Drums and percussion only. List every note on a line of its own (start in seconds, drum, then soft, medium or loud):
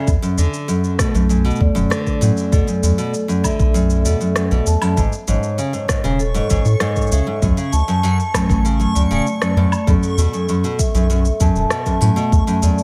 0.07 kick loud
0.07 shaker soft
0.23 shaker soft
0.38 shaker medium
0.53 shaker soft
0.69 shaker soft
0.84 shaker soft
0.99 kick loud
0.99 cross-stick medium
0.99 shaker medium
1.15 shaker soft
1.30 shaker soft
1.45 shaker soft
1.50 shaker soft
1.56 shaker soft
1.61 kick loud
1.76 shaker soft
1.91 cross-stick medium
1.91 shaker soft
2.07 kick medium
2.07 shaker soft
2.22 shaker medium
2.37 shaker soft
2.52 kick loud
2.52 shaker soft
2.68 shaker soft
2.83 shaker medium
2.98 shaker soft
3.14 shaker soft
3.29 shaker soft
3.44 kick medium
3.44 low woodblock soft
3.44 shaker medium
3.60 kick loud
3.60 shaker soft
3.75 shaker soft
3.90 shaker soft
4.05 shaker medium
4.21 shaker soft
4.36 cross-stick medium
4.36 shaker soft
4.51 shaker soft
4.66 shaker medium
4.82 low woodblock medium
4.82 shaker soft
4.97 kick loud
4.97 shaker soft
5.12 shaker soft
5.28 shaker medium
5.43 shaker soft
5.58 shaker soft
5.73 shaker soft
5.89 kick loud
5.89 cross-stick medium
5.89 shaker medium
6.04 shaker soft
6.19 shaker soft
6.35 shaker soft
6.50 kick medium
6.50 shaker medium
6.65 shaker soft
6.80 cross-stick medium
6.80 shaker soft
6.96 kick medium
6.96 shaker soft
7.01 shaker soft
7.07 shaker soft
7.12 shaker medium
7.42 kick loud
7.42 shaker soft
7.58 shaker soft
7.73 shaker medium
7.88 shaker soft
8.04 shaker soft
8.20 shaker soft
8.34 kick medium
8.34 cross-stick medium
8.34 low woodblock soft
8.34 shaker medium
8.50 kick medium
8.50 shaker soft
8.65 shaker soft
8.80 shaker soft
8.96 shaker medium
9.12 shaker soft
9.27 shaker soft
9.42 cross-stick medium
9.42 shaker soft
9.72 low woodblock medium
9.72 shaker soft
9.87 kick loud
9.87 shaker soft
10.03 shaker soft
10.18 shaker medium
10.34 shaker soft
10.49 shaker soft
10.64 shaker soft
10.79 kick medium
10.79 shaker medium
10.95 shaker soft
11.10 shaker soft
11.25 shaker soft
11.40 kick medium
11.40 shaker medium
11.56 shaker soft
11.70 cross-stick medium
11.70 shaker soft
11.86 kick medium
11.86 shaker soft
12.01 shaker medium
12.17 shaker soft
12.32 kick loud
12.32 shaker soft
12.48 shaker soft
12.63 shaker medium
12.78 shaker soft